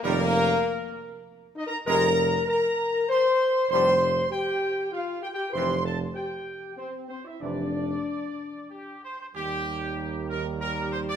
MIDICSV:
0, 0, Header, 1, 5, 480
1, 0, Start_track
1, 0, Tempo, 611621
1, 27, Time_signature, 3, 2, 24, 8
1, 4827, Tempo, 641026
1, 7227, Tempo, 623701
1, 8617, End_track
2, 0, Start_track
2, 0, Title_t, "Trumpet section"
2, 0, Program_c, 0, 61
2, 29, Note_on_c, 0, 70, 110
2, 954, Note_off_c, 0, 70, 0
2, 1227, Note_on_c, 0, 75, 87
2, 1300, Note_off_c, 0, 75, 0
2, 1307, Note_on_c, 0, 82, 97
2, 1378, Note_off_c, 0, 82, 0
2, 1469, Note_on_c, 0, 82, 114
2, 1915, Note_off_c, 0, 82, 0
2, 1948, Note_on_c, 0, 82, 93
2, 2395, Note_off_c, 0, 82, 0
2, 2427, Note_on_c, 0, 84, 95
2, 2873, Note_off_c, 0, 84, 0
2, 2902, Note_on_c, 0, 84, 105
2, 3351, Note_off_c, 0, 84, 0
2, 3381, Note_on_c, 0, 79, 89
2, 3831, Note_off_c, 0, 79, 0
2, 3867, Note_on_c, 0, 77, 75
2, 4088, Note_off_c, 0, 77, 0
2, 4101, Note_on_c, 0, 79, 85
2, 4137, Note_off_c, 0, 79, 0
2, 4186, Note_on_c, 0, 79, 82
2, 4333, Note_off_c, 0, 79, 0
2, 4346, Note_on_c, 0, 84, 89
2, 4567, Note_off_c, 0, 84, 0
2, 4586, Note_on_c, 0, 81, 79
2, 4694, Note_off_c, 0, 81, 0
2, 4823, Note_on_c, 0, 79, 67
2, 5265, Note_off_c, 0, 79, 0
2, 5293, Note_on_c, 0, 72, 57
2, 5401, Note_off_c, 0, 72, 0
2, 5529, Note_on_c, 0, 72, 57
2, 5643, Note_off_c, 0, 72, 0
2, 5652, Note_on_c, 0, 76, 56
2, 5770, Note_on_c, 0, 74, 65
2, 5773, Note_off_c, 0, 76, 0
2, 6736, Note_on_c, 0, 67, 64
2, 6738, Note_off_c, 0, 74, 0
2, 6965, Note_off_c, 0, 67, 0
2, 6981, Note_on_c, 0, 72, 71
2, 7096, Note_off_c, 0, 72, 0
2, 7106, Note_on_c, 0, 72, 68
2, 7159, Note_off_c, 0, 72, 0
2, 7220, Note_on_c, 0, 67, 103
2, 7913, Note_off_c, 0, 67, 0
2, 7947, Note_on_c, 0, 70, 88
2, 8055, Note_off_c, 0, 70, 0
2, 8184, Note_on_c, 0, 70, 92
2, 8408, Note_off_c, 0, 70, 0
2, 8426, Note_on_c, 0, 72, 93
2, 8480, Note_off_c, 0, 72, 0
2, 8553, Note_on_c, 0, 74, 98
2, 8617, Note_off_c, 0, 74, 0
2, 8617, End_track
3, 0, Start_track
3, 0, Title_t, "French horn section"
3, 0, Program_c, 1, 60
3, 30, Note_on_c, 1, 58, 127
3, 955, Note_off_c, 1, 58, 0
3, 1223, Note_on_c, 1, 63, 106
3, 1298, Note_off_c, 1, 63, 0
3, 1310, Note_on_c, 1, 70, 105
3, 1380, Note_off_c, 1, 70, 0
3, 1466, Note_on_c, 1, 70, 124
3, 1914, Note_off_c, 1, 70, 0
3, 1943, Note_on_c, 1, 70, 104
3, 2392, Note_off_c, 1, 70, 0
3, 2422, Note_on_c, 1, 72, 124
3, 2871, Note_off_c, 1, 72, 0
3, 2898, Note_on_c, 1, 72, 116
3, 3349, Note_off_c, 1, 72, 0
3, 3382, Note_on_c, 1, 67, 102
3, 3861, Note_on_c, 1, 65, 96
3, 3862, Note_off_c, 1, 67, 0
3, 4085, Note_off_c, 1, 65, 0
3, 4095, Note_on_c, 1, 67, 98
3, 4133, Note_off_c, 1, 67, 0
3, 4181, Note_on_c, 1, 67, 92
3, 4330, Note_off_c, 1, 67, 0
3, 4335, Note_on_c, 1, 72, 99
3, 4577, Note_on_c, 1, 69, 85
3, 4578, Note_off_c, 1, 72, 0
3, 4687, Note_off_c, 1, 69, 0
3, 4820, Note_on_c, 1, 67, 68
3, 5264, Note_off_c, 1, 67, 0
3, 5293, Note_on_c, 1, 60, 80
3, 5516, Note_off_c, 1, 60, 0
3, 5526, Note_on_c, 1, 60, 75
3, 5641, Note_off_c, 1, 60, 0
3, 5647, Note_on_c, 1, 64, 66
3, 5762, Note_off_c, 1, 64, 0
3, 5765, Note_on_c, 1, 62, 80
3, 6950, Note_off_c, 1, 62, 0
3, 7220, Note_on_c, 1, 58, 81
3, 7222, Note_on_c, 1, 67, 82
3, 8617, Note_off_c, 1, 58, 0
3, 8617, Note_off_c, 1, 67, 0
3, 8617, End_track
4, 0, Start_track
4, 0, Title_t, "Trombone section"
4, 0, Program_c, 2, 61
4, 22, Note_on_c, 2, 55, 92
4, 23, Note_on_c, 2, 51, 89
4, 191, Note_off_c, 2, 51, 0
4, 191, Note_off_c, 2, 55, 0
4, 1464, Note_on_c, 2, 56, 86
4, 1467, Note_on_c, 2, 48, 84
4, 1632, Note_off_c, 2, 56, 0
4, 1633, Note_off_c, 2, 48, 0
4, 2909, Note_on_c, 2, 45, 82
4, 2912, Note_on_c, 2, 55, 81
4, 3074, Note_off_c, 2, 45, 0
4, 3076, Note_off_c, 2, 55, 0
4, 4343, Note_on_c, 2, 52, 72
4, 4344, Note_on_c, 2, 48, 66
4, 4510, Note_off_c, 2, 48, 0
4, 4510, Note_off_c, 2, 52, 0
4, 5772, Note_on_c, 2, 52, 52
4, 5776, Note_on_c, 2, 48, 59
4, 5940, Note_off_c, 2, 52, 0
4, 5943, Note_off_c, 2, 48, 0
4, 7220, Note_on_c, 2, 55, 69
4, 7223, Note_on_c, 2, 51, 67
4, 8617, Note_off_c, 2, 51, 0
4, 8617, Note_off_c, 2, 55, 0
4, 8617, End_track
5, 0, Start_track
5, 0, Title_t, "Tuba"
5, 0, Program_c, 3, 58
5, 28, Note_on_c, 3, 29, 99
5, 427, Note_off_c, 3, 29, 0
5, 1466, Note_on_c, 3, 29, 96
5, 1865, Note_off_c, 3, 29, 0
5, 2905, Note_on_c, 3, 29, 84
5, 3303, Note_off_c, 3, 29, 0
5, 4345, Note_on_c, 3, 29, 88
5, 4745, Note_off_c, 3, 29, 0
5, 5776, Note_on_c, 3, 29, 69
5, 6177, Note_off_c, 3, 29, 0
5, 7227, Note_on_c, 3, 39, 72
5, 8617, Note_off_c, 3, 39, 0
5, 8617, End_track
0, 0, End_of_file